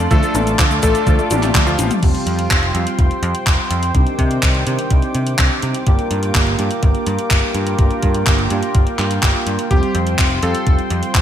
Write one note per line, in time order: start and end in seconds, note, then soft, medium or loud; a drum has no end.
0.10 0.21 D2 loud
0.10 0.16 F3 loud
0.10 0.80 A3 loud
0.10 0.34 A3 medium
0.10 0.80 D4 loud
0.10 2.01 F4 medium
0.10 0.80 F4 loud
0.10 0.80 A4 loud
0.10 0.34 A4 loud
0.10 2.01 D5 medium
0.10 2.01 A5 medium
0.10 2.01 D6 loud
0.10 kick loud
0.10 closed hi-hat medium
0.10 cabasa soft
0.23 0.34 A3 medium
0.23 closed hi-hat soft
0.23 cabasa soft
0.35 0.54 A1 loud
0.35 0.40 D4 medium
0.35 closed hi-hat medium
0.35 high tom medium
0.35 cabasa medium
0.47 closed hi-hat medium
0.47 cabasa soft
0.59 0.78 D2 medium
0.59 0.64 F3 medium
0.59 kick loud
0.59 clap loud
0.59 closed hi-hat medium
0.59 cabasa soft
0.71 0.82 A3 medium
0.71 closed hi-hat soft
0.71 cabasa soft
0.83 0.93 A1 loud
0.83 1.13 A3 medium
0.83 1.28 A3 loud
0.83 1.28 D4 medium
0.83 0.92 D4 medium
0.83 1.28 F4 medium
0.83 1.28 A4 loud
0.83 1.13 A4 loud
0.83 kick medium
0.83 closed hi-hat loud
0.83 cabasa medium
0.95 closed hi-hat medium
0.95 cabasa soft
1.07 1.17 D2 medium
1.07 1.12 F3 loud
1.07 kick loud
1.07 closed hi-hat medium
1.07 cabasa soft
1.19 1.30 A3 medium
1.19 closed hi-hat soft
1.19 cabasa soft
1.31 1.50 A1 loud
1.31 2.00 A3 medium
1.31 2.00 D4 medium
1.31 1.36 D4 medium
1.31 2.00 F4 medium
1.31 2.00 G4 medium
1.31 closed hi-hat medium
1.31 high tom medium
1.31 cabasa medium
1.43 clap soft
1.43 closed hi-hat medium
1.43 high tom medium
1.43 cabasa soft
1.55 1.74 D2 medium
1.55 1.60 F3 medium
1.55 kick loud
1.55 clap loud
1.55 closed hi-hat medium
1.55 cabasa soft
1.66 1.89 F3 medium
1.66 1.78 A3 medium
1.66 1.90 F4 medium
1.66 closed hi-hat soft
1.66 cabasa soft
1.79 1.88 A1 medium
1.79 1.88 D4 medium
1.79 closed hi-hat loud
1.79 high tom medium
1.79 cabasa medium
1.91 closed hi-hat medium
1.91 mid tom medium
1.91 cabasa soft
2.03 2.13 F1 medium
2.03 2.72 G3 loud
2.03 2.72 C4 medium
2.03 2.72 F4 loud
2.03 3.93 F4 medium
2.03 2.72 G4 loud
2.03 5.83 C5 medium
2.03 5.83 G5 medium
2.03 3.93 C6 medium
2.03 kick loud
2.03 closed hi-hat medium
2.03 crash medium
2.15 closed hi-hat soft
2.26 2.46 F2 medium
2.26 closed hi-hat medium
2.39 closed hi-hat medium
2.51 2.70 F1 medium
2.51 kick loud
2.51 clap loud
2.51 closed hi-hat medium
2.63 closed hi-hat soft
2.75 2.84 F2 medium
2.75 3.92 G3 medium
2.75 3.92 C4 medium
2.75 3.92 F4 medium
2.75 3.92 G4 loud
2.75 closed hi-hat medium
2.87 closed hi-hat medium
2.99 3.09 F1 medium
2.99 kick loud
2.99 closed hi-hat medium
3.11 closed hi-hat soft
3.23 3.32 F2 loud
3.23 closed hi-hat medium
3.35 closed hi-hat medium
3.47 3.56 F1 medium
3.47 kick loud
3.47 clap loud
3.47 closed hi-hat medium
3.71 3.90 F2 medium
3.71 closed hi-hat medium
3.83 closed hi-hat medium
3.94 4.05 C2 medium
3.94 5.85 D#3 medium
3.94 4.64 C4 loud
3.94 4.64 D4 loud
3.94 4.64 D#4 medium
3.94 4.64 G4 loud
3.94 9.67 D6 medium
3.94 kick loud
3.94 closed hi-hat medium
4.07 closed hi-hat soft
4.19 4.38 C3 loud
4.19 kick medium
4.19 closed hi-hat medium
4.31 closed hi-hat medium
4.43 4.62 C2 medium
4.43 kick loud
4.43 clap loud
4.43 closed hi-hat medium
4.55 closed hi-hat soft
4.67 4.77 C3 loud
4.67 5.84 C4 medium
4.67 5.84 D4 medium
4.67 5.84 D#4 medium
4.67 5.84 G4 loud
4.67 closed hi-hat medium
4.79 closed hi-hat medium
4.90 5.01 C2 medium
4.90 kick loud
4.90 closed hi-hat medium
5.02 closed hi-hat soft
5.15 5.34 C3 medium
5.15 closed hi-hat medium
5.27 closed hi-hat medium
5.38 5.49 C2 loud
5.38 kick loud
5.38 clap loud
5.38 closed hi-hat medium
5.62 5.73 C3 medium
5.62 closed hi-hat medium
5.75 closed hi-hat medium
5.87 5.97 G1 loud
5.87 6.56 A#3 loud
5.87 6.56 D4 medium
5.87 6.56 F4 medium
5.87 11.22 F4 medium
5.87 6.56 G4 loud
5.87 9.67 A#4 medium
5.87 11.22 G5 medium
5.87 kick loud
5.87 closed hi-hat medium
5.99 closed hi-hat soft
6.11 6.30 G2 loud
6.11 closed hi-hat medium
6.23 closed hi-hat medium
6.35 6.54 G1 medium
6.35 kick loud
6.35 clap loud
6.35 closed hi-hat medium
6.47 closed hi-hat soft
6.59 6.69 G2 loud
6.59 7.76 A#3 medium
6.59 7.76 D4 medium
6.59 7.76 F4 medium
6.59 7.76 G4 loud
6.59 closed hi-hat medium
6.71 closed hi-hat medium
6.83 6.93 G1 medium
6.83 kick loud
6.83 closed hi-hat medium
6.95 closed hi-hat soft
7.07 7.17 G2 loud
7.07 closed hi-hat medium
7.19 closed hi-hat medium
7.31 7.41 G1 medium
7.31 kick loud
7.31 clap loud
7.31 closed hi-hat medium
7.55 7.74 G2 medium
7.55 closed hi-hat medium
7.67 closed hi-hat medium
7.79 7.89 G1 loud
7.79 8.48 A#3 loud
7.79 8.48 D4 medium
7.79 8.48 F4 medium
7.79 8.48 G4 loud
7.79 kick loud
7.79 closed hi-hat medium
7.91 closed hi-hat soft
8.03 8.22 G2 loud
8.03 kick medium
8.03 closed hi-hat medium
8.14 closed hi-hat medium
8.26 8.46 G1 medium
8.26 kick loud
8.26 clap loud
8.26 closed hi-hat medium
8.39 closed hi-hat soft
8.50 8.61 G2 loud
8.50 8.96 A#3 medium
8.50 8.96 D4 medium
8.50 8.96 F4 medium
8.50 8.96 G4 loud
8.50 closed hi-hat medium
8.63 closed hi-hat soft
8.75 8.85 G1 medium
8.75 kick loud
8.75 closed hi-hat medium
8.87 closed hi-hat soft
8.99 9.18 G2 loud
8.99 9.68 A#3 medium
8.99 9.68 D4 medium
8.99 9.68 F4 medium
8.99 9.68 G4 medium
8.99 clap medium
8.99 closed hi-hat medium
9.11 closed hi-hat medium
9.23 9.33 G1 loud
9.23 kick loud
9.23 clap loud
9.23 closed hi-hat medium
9.47 9.56 G2 medium
9.47 closed hi-hat medium
9.59 closed hi-hat medium
9.70 9.81 F1 loud
9.70 10.40 G3 loud
9.70 10.40 C4 loud
9.70 10.40 F4 loud
9.70 10.40 G4 loud
9.70 9.94 G4 loud
9.70 11.22 C5 medium
9.70 11.22 C6 medium
9.70 kick loud
9.70 closed hi-hat medium
9.83 closed hi-hat soft
9.95 10.14 F2 medium
9.95 closed hi-hat medium
10.07 closed hi-hat soft
10.19 10.38 F1 medium
10.19 kick loud
10.19 clap loud
10.19 closed hi-hat medium
10.31 closed hi-hat soft
10.43 10.53 F2 loud
10.43 11.22 G3 medium
10.43 11.22 C4 medium
10.43 11.22 F4 medium
10.43 11.22 G4 loud
10.43 10.73 A4 medium
10.43 closed hi-hat medium
10.55 closed hi-hat medium
10.67 10.76 F1 medium
10.67 kick loud
10.67 closed hi-hat medium
10.79 closed hi-hat soft
10.90 11.00 F2 loud
10.90 closed hi-hat medium
11.03 closed hi-hat medium
11.15 11.22 F1 medium
11.15 kick loud
11.15 clap loud
11.15 closed hi-hat medium